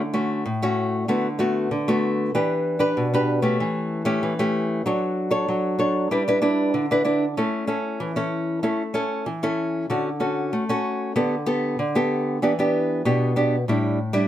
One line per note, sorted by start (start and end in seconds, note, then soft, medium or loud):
0.00 0.42 D3 medium
0.14 0.43 A3 medium
0.14 0.43 C#4 soft
0.14 0.43 F#4 soft
0.46 1.05 A2 medium
0.62 1.04 A3 medium
0.62 1.04 C#4 medium
0.62 1.04 F#4 medium
1.08 1.68 D3 medium
1.08 1.27 A3 medium
1.08 1.27 B3 medium
1.08 1.27 F#4 medium
1.39 1.69 A3 medium
1.39 1.69 B3 medium
1.39 1.69 F#4 medium
1.71 2.31 D3 medium
1.88 2.30 A3 medium
1.88 2.30 B3 medium
1.88 2.30 F#4 medium
2.35 2.94 E3 medium
2.35 2.76 D4 medium
2.35 2.77 G4 medium
2.35 2.77 B4 medium
2.79 3.07 D4 medium
2.79 3.07 G4 medium
2.79 3.07 B4 medium
2.97 3.57 B2 medium
3.14 3.40 D4 medium
3.14 3.40 G4 medium
3.14 3.40 B4 medium
3.42 4.01 A3 medium
3.42 4.01 C#4 soft
3.42 4.01 G4 medium
3.60 4.20 E3 medium
4.05 4.33 A3 medium
4.05 4.33 C#4 medium
4.05 4.33 G4 medium
4.23 4.83 E3 medium
4.39 4.81 A3 medium
4.39 4.81 C#4 medium
4.39 4.81 G4 medium
4.86 5.46 F#3 medium
4.86 5.28 D4 medium
4.86 5.28 A4 medium
4.86 5.28 C#5 medium
5.31 5.74 D4 medium
5.31 5.74 A4 medium
5.31 5.74 C#5 medium
5.48 6.08 F#3 medium
5.79 6.08 D4 medium
5.79 6.09 A4 medium
5.79 6.09 C#5 medium
6.11 6.71 G3 medium
6.11 6.22 D4 soft
6.11 6.22 E4 medium
6.11 6.22 B4 medium
6.28 6.38 D4 medium
6.28 6.39 E4 medium
6.28 6.39 B4 medium
6.42 6.85 D4 medium
6.42 6.85 E4 medium
6.42 6.85 B4 medium
6.74 7.34 D3 medium
6.91 7.01 D4 medium
6.91 7.02 E4 medium
6.91 7.02 B4 medium
7.05 7.24 D4 medium
7.05 7.24 E4 medium
7.05 7.24 B4 medium
7.37 7.97 A3 medium
7.37 7.64 C#4 soft
7.37 7.64 E4 medium
7.37 7.64 A4 medium
7.67 8.11 C#4 soft
7.67 8.11 E4 medium
7.67 8.11 A4 medium
8.00 8.60 E3 medium
8.16 8.59 C#4 medium
8.16 8.59 E4 medium
8.16 8.59 A4 medium
8.63 9.23 A3 medium
8.63 8.82 C#4 soft
8.63 8.82 E4 medium
8.63 8.82 A4 medium
8.94 9.24 C#4 medium
8.94 9.24 E4 medium
8.94 9.25 A4 medium
9.26 9.86 E3 medium
9.43 9.85 C#4 medium
9.43 9.85 E4 medium
9.43 9.85 A4 medium
9.90 10.50 D3 medium
9.90 10.08 C#4 soft
9.90 10.08 F#4 soft
9.90 10.09 A4 medium
10.20 10.63 C#4 soft
10.20 10.63 F#4 soft
10.20 10.63 A4 medium
10.53 11.13 A3 medium
10.69 11.11 C#4 medium
10.69 11.11 F#4 medium
10.69 11.12 A4 medium
11.16 11.76 D3 medium
11.16 11.34 B3 medium
11.16 11.35 G4 medium
11.16 11.35 A4 medium
11.46 11.77 B3 medium
11.46 11.77 G4 medium
11.46 11.77 A4 medium
11.79 12.39 D3 medium
11.95 12.37 B3 medium
11.95 12.38 G4 medium
11.95 12.38 A4 medium
12.42 13.02 E3 medium
12.42 12.52 B3 soft
12.42 12.52 D4 medium
12.42 12.52 G4 medium
12.59 13.01 B3 medium
12.59 13.01 D4 medium
12.59 13.01 G4 medium
13.05 13.65 B2 medium
13.05 13.32 B3 medium
13.05 13.32 D4 soft
13.05 13.32 G4 medium
13.36 13.55 B3 medium
13.36 13.55 D4 medium
13.36 13.55 G4 medium
13.68 14.28 A2 medium
13.68 13.98 G3 medium
13.68 13.98 D4 medium
13.68 13.98 E4 medium
14.13 14.28 G3 medium
14.13 14.28 D4 medium
14.13 14.28 E4 medium